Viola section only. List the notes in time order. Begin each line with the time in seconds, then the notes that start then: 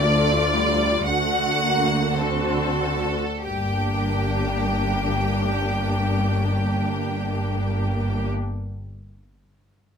0.03 A3 F4
0.54 G3
1.05 A3 F#4
1.61 A#3
2.19 C4 F#4
3.47 A#3 D4